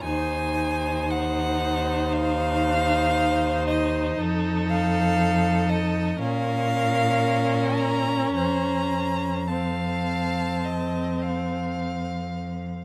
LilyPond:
<<
  \new Staff \with { instrumentName = "Violin" } { \time 4/4 \key f \phrygian \tempo 4 = 57 aes''4 ges''4 f''4. ees''8 | r8 f''4 ees''8 f''4. bes''8 | bes''4 a''2 r4 | }
  \new Staff \with { instrumentName = "Violin" } { \time 4/4 \key f \phrygian c''1 | a'2 bes'2 | c''4 f''4 ees''8 f''4. | }
  \new Staff \with { instrumentName = "Viola" } { \time 4/4 \key f \phrygian ees'1~ | ees'2 des'2~ | des'4 c'2. | }
  \new Staff \with { instrumentName = "Cello" } { \clef bass \time 4/4 \key f \phrygian ees,1 | f,2 bes,2 | f,1 | }
>>